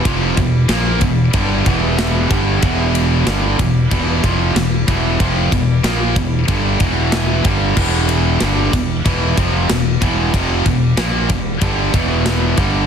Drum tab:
CC |--------|--------|--------|x-------|
RD |xxxxxxxx|xxxxxxxx|xxxxxxxx|-xxxxxxx|
SD |--o---o-|--o---o-|--o---o-|--o---o-|
BD |oo-ooo-o|o--ooo-o|oo-ooo-o|o--ooo-o|

CC |--------|
RD |xxxxxxxx|
SD |--o---o-|
BD |oo-ooo-o|